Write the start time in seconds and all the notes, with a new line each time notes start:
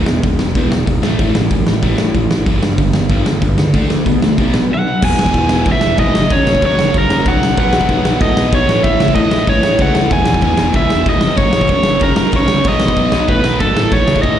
0.06 E2 B2, snare
0.23 E1 E2 B2, kick, open hi-hat
0.39 E1 E2 B2, snare
0.55 E1 E2 B2 E3, kick, open hi-hat
0.70 E1 E2 B2, snare
0.86 E1 E2 B2, kick, open hi-hat
1.02 A1 A2 E3 A3, snare
1.19 A1 A2 E3 A3, kick, open hi-hat
1.35 A1 A2 E3, snare
1.51 F#2 A2 E3, kick, open hi-hat
1.67 A1 A2 E3, snare
1.82 A1 A2 E3 A3, kick, open hi-hat
1.98 A2 E3, snare
2.15 A1 A2 E3, kick, open hi-hat
2.31 A1 A2 E3, snare
2.46 G1 G2 D3 G3, kick, open hi-hat
2.62 G2 D3, snare
2.78 G1 G2 D3, kick, open hi-hat
2.93 G1 G2 D3, snare
3.09 G1 G2 D3 G3, kick, open hi-hat
3.26 G1 G2 D3, snare
3.41 G1 G2 D3, kick, open hi-hat
3.57 C#2 G2 D3, snare
3.74 D2 D3 A3 D4, kick, open hi-hat
3.90 D2 D3 A3, snare
4.06 B2 D3 A3, kick, open hi-hat
4.22 D2 D3 A3, snare
4.38 B1 B2 F#3 B3, kick, open hi-hat
4.54 B2 F#3, snare
4.71 B2 F#3 F#5
4.86 B2 F#3
5.02 E1 E2 B2 E3 G#5, kick, crash
5.19 E1 E2 B2 E3, snare
5.26 kick
5.34 E1 E2 B2 E3, kick, crash
5.49 E1 E2 B2 E3, snare
5.65 C#2 E2 B2 E3, kick, crash
5.72 E5
5.81 E1 E2 B2 E3, snare
5.97 G#1 E2 B2 E3 D#5, kick, crash
6.15 F#1 F#2 C#3 F#3, snare
6.30 F#1 F#2 C#3 F#3 C#5, kick, crash
6.46 A#1 F#2 C#3 F#3, snare
6.55 kick
6.62 F#2 C#3 F#3 C#5, kick, crash
6.78 F#1 F#2 C#3 F#3, snare
6.94 F#1 F#2 C#3 F#3, kick, crash
6.99 A#4
7.10 F#1 F#2 C#3 F#3, snare
7.25 B1 F#2 C#3 F#3 F#5, kick, crash
7.42 B1 F#2 C#3 F#3, snare
7.57 B1 B2 F#3 B3 F#5, kick, crash
7.73 B1 B2 F#3 B3, snare
7.81 kick
7.89 B1 B2 F#3 B3, kick, crash
8.05 B1 B2 F#3 B3, snare
8.21 A2 B2 F#3 B3 D#5, kick, crash
8.36 B1 B2 F#3 B3, snare
8.52 B1 B2 F#3 B3 C#5, kick, crash
8.68 A1 A2 E3 A3, snare
8.83 A1 A2 E3 A3 E5, kick, crash
8.99 C#2 A2 E3 A3, snare
9.08 kick
9.15 A2 E3 A3 D#5, kick, crash
9.31 A1 A2 E3 A3, snare
9.47 A1 A2 E3 A3 C#5, kick, crash
9.63 A1 A2 E3 A3, snare
9.78 C#2 A2 E3 A3 F#5, kick, crash
9.95 C#2 A2 E3 A3, snare
10.10 E1 E2 B2 E3 G#5, kick, crash
10.26 E1 E2 B2 E3, snare
10.34 kick
10.41 E1 E2 B2 E3, kick, crash
10.57 E1 E2 B2 E3, snare
10.73 C#2 E2 B2 E3 E5, kick, crash
10.90 E1 E2 B2 E3, snare
11.06 E1 E2 B2 E3 D#5, kick, crash
11.21 F#1 F#2, snare
11.25 C#3 F#3
11.37 F#1 F#3 C#5, kick, crash
11.41 F#2 C#3
11.53 A#1 F#2 C#3 F#3, snare
11.61 kick
11.68 F#2 C#3 F#3 C#5, kick, crash
11.72 F#2
11.83 F#1, snare
11.88 F#2 C#3 F#3
12.00 F#1 F#3 A#4, kick, crash
12.04 F#2 C#3
12.16 F#1 F#2 C#3 F#3, snare
12.32 B1 C#3 F#3, kick, crash
12.36 F#2 C#5
12.48 C#2 F#2 C#3 F#3, snare
12.64 B1 B2 F#3 B3, kick, crash
12.68 D#5
12.80 B1 B2 F#3 B3, snare
12.88 kick
12.96 B1 B2 F#3 B3, kick, crash
13.12 B1 B2 F#3 B3, snare
13.28 A2 B2 F#3 B3 B4, kick, crash
13.44 B1 B2 F#3 B3, snare
13.60 G#1 B2 F#3 B3 A4, kick, crash
13.75 A1 A2 E3 A3, snare
13.91 A1 A2 E3 A3 C#5, kick, crash
14.07 C#2 A2 E3 A3, snare
14.16 kick
14.22 A2 E3 A3 D#5, kick, crash